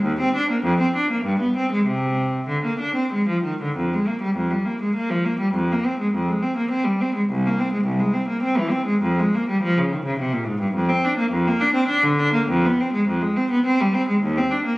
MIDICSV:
0, 0, Header, 1, 2, 480
1, 0, Start_track
1, 0, Tempo, 604839
1, 32, Time_signature, 3, 2, 24, 8
1, 1471, Tempo, 628931
1, 2911, Tempo, 599401
1, 4831, Tempo, 576369
1, 12027, End_track
2, 0, Start_track
2, 0, Title_t, "Cello"
2, 0, Program_c, 0, 42
2, 24, Note_on_c, 0, 39, 79
2, 149, Note_off_c, 0, 39, 0
2, 162, Note_on_c, 0, 60, 77
2, 276, Note_off_c, 0, 60, 0
2, 282, Note_on_c, 0, 62, 68
2, 394, Note_off_c, 0, 62, 0
2, 403, Note_on_c, 0, 58, 63
2, 503, Note_on_c, 0, 41, 88
2, 512, Note_off_c, 0, 58, 0
2, 621, Note_off_c, 0, 41, 0
2, 635, Note_on_c, 0, 60, 66
2, 747, Note_off_c, 0, 60, 0
2, 759, Note_on_c, 0, 62, 63
2, 869, Note_off_c, 0, 62, 0
2, 877, Note_on_c, 0, 58, 67
2, 989, Note_off_c, 0, 58, 0
2, 989, Note_on_c, 0, 43, 75
2, 1105, Note_off_c, 0, 43, 0
2, 1115, Note_on_c, 0, 59, 54
2, 1229, Note_off_c, 0, 59, 0
2, 1242, Note_on_c, 0, 60, 63
2, 1354, Note_off_c, 0, 60, 0
2, 1366, Note_on_c, 0, 56, 61
2, 1477, Note_off_c, 0, 56, 0
2, 1477, Note_on_c, 0, 48, 67
2, 1940, Note_off_c, 0, 48, 0
2, 1949, Note_on_c, 0, 50, 56
2, 2064, Note_off_c, 0, 50, 0
2, 2074, Note_on_c, 0, 58, 48
2, 2187, Note_off_c, 0, 58, 0
2, 2188, Note_on_c, 0, 62, 59
2, 2303, Note_off_c, 0, 62, 0
2, 2307, Note_on_c, 0, 60, 57
2, 2423, Note_off_c, 0, 60, 0
2, 2443, Note_on_c, 0, 56, 57
2, 2552, Note_off_c, 0, 56, 0
2, 2563, Note_on_c, 0, 53, 48
2, 2675, Note_off_c, 0, 53, 0
2, 2680, Note_on_c, 0, 51, 53
2, 2795, Note_off_c, 0, 51, 0
2, 2818, Note_on_c, 0, 50, 51
2, 2922, Note_off_c, 0, 50, 0
2, 2926, Note_on_c, 0, 41, 51
2, 3039, Note_off_c, 0, 41, 0
2, 3058, Note_on_c, 0, 56, 49
2, 3168, Note_off_c, 0, 56, 0
2, 3177, Note_on_c, 0, 58, 46
2, 3288, Note_off_c, 0, 58, 0
2, 3295, Note_on_c, 0, 55, 55
2, 3403, Note_on_c, 0, 41, 53
2, 3404, Note_off_c, 0, 55, 0
2, 3517, Note_off_c, 0, 41, 0
2, 3521, Note_on_c, 0, 55, 45
2, 3637, Note_off_c, 0, 55, 0
2, 3639, Note_on_c, 0, 58, 49
2, 3755, Note_off_c, 0, 58, 0
2, 3771, Note_on_c, 0, 56, 47
2, 3877, Note_off_c, 0, 56, 0
2, 3884, Note_on_c, 0, 58, 60
2, 3992, Note_off_c, 0, 58, 0
2, 4002, Note_on_c, 0, 53, 48
2, 4114, Note_off_c, 0, 53, 0
2, 4116, Note_on_c, 0, 58, 59
2, 4234, Note_off_c, 0, 58, 0
2, 4241, Note_on_c, 0, 55, 52
2, 4353, Note_on_c, 0, 41, 62
2, 4357, Note_off_c, 0, 55, 0
2, 4475, Note_off_c, 0, 41, 0
2, 4497, Note_on_c, 0, 58, 52
2, 4604, Note_on_c, 0, 60, 52
2, 4607, Note_off_c, 0, 58, 0
2, 4717, Note_on_c, 0, 56, 52
2, 4719, Note_off_c, 0, 60, 0
2, 4830, Note_off_c, 0, 56, 0
2, 4836, Note_on_c, 0, 41, 58
2, 4951, Note_off_c, 0, 41, 0
2, 4951, Note_on_c, 0, 56, 47
2, 5069, Note_on_c, 0, 60, 56
2, 5071, Note_off_c, 0, 56, 0
2, 5189, Note_off_c, 0, 60, 0
2, 5190, Note_on_c, 0, 58, 52
2, 5305, Note_on_c, 0, 60, 60
2, 5306, Note_off_c, 0, 58, 0
2, 5417, Note_on_c, 0, 55, 51
2, 5423, Note_off_c, 0, 60, 0
2, 5541, Note_off_c, 0, 55, 0
2, 5555, Note_on_c, 0, 60, 61
2, 5670, Note_off_c, 0, 60, 0
2, 5673, Note_on_c, 0, 56, 51
2, 5787, Note_off_c, 0, 56, 0
2, 5792, Note_on_c, 0, 36, 69
2, 5906, Note_off_c, 0, 36, 0
2, 5934, Note_on_c, 0, 58, 58
2, 6039, Note_off_c, 0, 58, 0
2, 6043, Note_on_c, 0, 60, 55
2, 6153, Note_off_c, 0, 60, 0
2, 6154, Note_on_c, 0, 56, 57
2, 6251, Note_on_c, 0, 36, 59
2, 6265, Note_off_c, 0, 56, 0
2, 6374, Note_off_c, 0, 36, 0
2, 6376, Note_on_c, 0, 56, 55
2, 6495, Note_on_c, 0, 60, 53
2, 6498, Note_off_c, 0, 56, 0
2, 6616, Note_on_c, 0, 58, 53
2, 6618, Note_off_c, 0, 60, 0
2, 6736, Note_off_c, 0, 58, 0
2, 6738, Note_on_c, 0, 60, 64
2, 6858, Note_off_c, 0, 60, 0
2, 6867, Note_on_c, 0, 52, 55
2, 6967, Note_on_c, 0, 60, 63
2, 6987, Note_off_c, 0, 52, 0
2, 7099, Note_on_c, 0, 56, 62
2, 7101, Note_off_c, 0, 60, 0
2, 7229, Note_off_c, 0, 56, 0
2, 7233, Note_on_c, 0, 41, 68
2, 7359, Note_off_c, 0, 41, 0
2, 7371, Note_on_c, 0, 56, 57
2, 7491, Note_off_c, 0, 56, 0
2, 7502, Note_on_c, 0, 58, 60
2, 7616, Note_off_c, 0, 58, 0
2, 7624, Note_on_c, 0, 55, 60
2, 7736, Note_off_c, 0, 55, 0
2, 7739, Note_on_c, 0, 53, 73
2, 7853, Note_off_c, 0, 53, 0
2, 7862, Note_on_c, 0, 49, 61
2, 7976, Note_off_c, 0, 49, 0
2, 7986, Note_on_c, 0, 51, 58
2, 8093, Note_on_c, 0, 49, 60
2, 8097, Note_off_c, 0, 51, 0
2, 8203, Note_on_c, 0, 48, 63
2, 8206, Note_off_c, 0, 49, 0
2, 8318, Note_off_c, 0, 48, 0
2, 8319, Note_on_c, 0, 46, 58
2, 8429, Note_on_c, 0, 44, 68
2, 8437, Note_off_c, 0, 46, 0
2, 8551, Note_off_c, 0, 44, 0
2, 8553, Note_on_c, 0, 43, 57
2, 8668, Note_on_c, 0, 41, 75
2, 8669, Note_off_c, 0, 43, 0
2, 8785, Note_off_c, 0, 41, 0
2, 8790, Note_on_c, 0, 60, 71
2, 8908, Note_off_c, 0, 60, 0
2, 8917, Note_on_c, 0, 62, 65
2, 9025, Note_on_c, 0, 58, 72
2, 9030, Note_off_c, 0, 62, 0
2, 9141, Note_off_c, 0, 58, 0
2, 9143, Note_on_c, 0, 41, 72
2, 9259, Note_off_c, 0, 41, 0
2, 9274, Note_on_c, 0, 58, 68
2, 9383, Note_on_c, 0, 62, 75
2, 9385, Note_off_c, 0, 58, 0
2, 9499, Note_off_c, 0, 62, 0
2, 9501, Note_on_c, 0, 60, 75
2, 9614, Note_on_c, 0, 62, 76
2, 9615, Note_off_c, 0, 60, 0
2, 9732, Note_off_c, 0, 62, 0
2, 9736, Note_on_c, 0, 50, 70
2, 9859, Note_off_c, 0, 50, 0
2, 9869, Note_on_c, 0, 62, 84
2, 9990, Note_off_c, 0, 62, 0
2, 9992, Note_on_c, 0, 58, 64
2, 10114, Note_off_c, 0, 58, 0
2, 10121, Note_on_c, 0, 41, 89
2, 10243, Note_off_c, 0, 41, 0
2, 10255, Note_on_c, 0, 59, 72
2, 10372, Note_off_c, 0, 59, 0
2, 10384, Note_on_c, 0, 60, 69
2, 10491, Note_on_c, 0, 56, 68
2, 10496, Note_off_c, 0, 60, 0
2, 10607, Note_off_c, 0, 56, 0
2, 10612, Note_on_c, 0, 41, 73
2, 10726, Note_on_c, 0, 56, 64
2, 10727, Note_off_c, 0, 41, 0
2, 10846, Note_off_c, 0, 56, 0
2, 10850, Note_on_c, 0, 60, 71
2, 10967, Note_off_c, 0, 60, 0
2, 10969, Note_on_c, 0, 59, 73
2, 11083, Note_off_c, 0, 59, 0
2, 11092, Note_on_c, 0, 60, 77
2, 11203, Note_off_c, 0, 60, 0
2, 11219, Note_on_c, 0, 55, 68
2, 11327, Note_off_c, 0, 55, 0
2, 11327, Note_on_c, 0, 60, 78
2, 11440, Note_off_c, 0, 60, 0
2, 11449, Note_on_c, 0, 56, 62
2, 11559, Note_off_c, 0, 56, 0
2, 11565, Note_on_c, 0, 39, 80
2, 11676, Note_off_c, 0, 39, 0
2, 11691, Note_on_c, 0, 60, 69
2, 11799, Note_on_c, 0, 62, 63
2, 11802, Note_off_c, 0, 60, 0
2, 11916, Note_off_c, 0, 62, 0
2, 11921, Note_on_c, 0, 58, 67
2, 12027, Note_off_c, 0, 58, 0
2, 12027, End_track
0, 0, End_of_file